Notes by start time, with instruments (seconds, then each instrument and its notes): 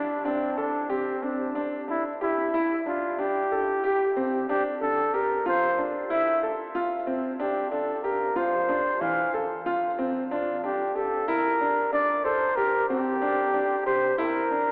Already playing: grand piano D4, flugelhorn D4
0.25 flugelhorn C4, grand piano D4
0.58 flugelhorn D4, grand piano A4
0.90 flugelhorn C4, grand piano G4
1.23 grand piano C4, flugelhorn D4
1.55 grand piano D4
1.88 grand piano D4, flugelhorn E4
2.21 flugelhorn E4, grand piano G4
2.54 grand piano E4
2.86 grand piano D4, flugelhorn F4
3.19 grand piano D4, flugelhorn G4
3.52 grand piano A4
3.84 grand piano G4
4.17 grand piano C4
4.49 grand piano D4, flugelhorn G4
4.81 grand piano D4, flugelhorn A4
5.14 grand piano G4, flugelhorn A#4
5.46 grand piano F4, flugelhorn C5
5.78 grand piano D4
6.10 grand piano E4, flugelhorn E5
6.43 grand piano A4
6.75 grand piano F4
7.07 grand piano C4
7.40 grand piano D4, flugelhorn G4
7.71 grand piano D4, flugelhorn A4
8.03 grand piano G4, flugelhorn A#4
8.36 grand piano F4, flugelhorn C5
8.69 grand piano D4
9.01 grand piano E3, flugelhorn F5
9.34 grand piano A4
9.66 grand piano F4
9.99 grand piano C4
10.31 grand piano D4, flugelhorn F4
10.64 grand piano D4, flugelhorn G4
10.95 grand piano G4, flugelhorn A4
11.28 grand piano E4, flugelhorn A#4
11.61 grand piano D4
11.93 grand piano D4, flugelhorn D5
12.24 grand piano A4, flugelhorn C5
12.56 grand piano G4, flugelhorn A#4
12.90 grand piano C4, flugelhorn G4
13.22 grand piano D4
13.53 grand piano D4
13.86 grand piano G4, flugelhorn C5
14.18 grand piano E4, flugelhorn A#4
14.51 grand piano D4